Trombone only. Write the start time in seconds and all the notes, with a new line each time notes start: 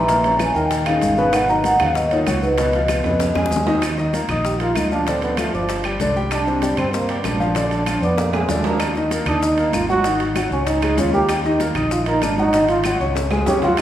Already playing: E3
0.39 E3
0.54 D#3
0.85 C#3
1.17 C#3
1.32 D#3
1.47 F#3
1.64 D#3
1.80 C#3
1.96 B2
2.11 A#2
2.43 G#2
2.58 B2
4.45 G4
4.61 F4
4.77 D#4
4.92 D4
5.08 C4
5.23 B3
5.39 A3
5.54 F3
6.32 D4
6.79 C4
6.93 A#3
7.24 D4
7.56 D4
8.03 B3
8.19 A#3
8.50 D4
9.27 D4
9.43 D#4
9.74 F4
9.89 F#4
10.52 C#4
10.67 D#4
10.99 F4
11.14 G4
11.91 F4
12.07 D#4
12.23 D4
12.38 D#4
12.69 F4
13.47 G4
13.63 F4